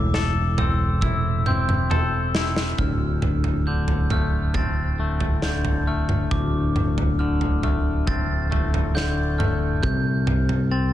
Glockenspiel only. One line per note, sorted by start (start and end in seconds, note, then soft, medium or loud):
0.00 0.58 D6 medium
0.58 1.00 E6 medium
1.01 1.46 E6 medium
1.46 1.90 G6 medium
1.90 2.78 E6 medium
2.79 3.67 F6 medium
3.67 4.11 G6 medium
4.11 4.55 F6 medium
4.55 5.43 A6 medium
5.43 5.87 G6 medium
5.87 6.31 F6 medium
6.31 7.19 D6 medium
7.19 7.63 F6 medium
7.64 8.08 F6 medium
8.08 8.95 A6 medium
8.95 9.39 G6 medium
9.38 9.83 F6 medium
9.83 10.71 G6 medium
10.72 10.93 A6 medium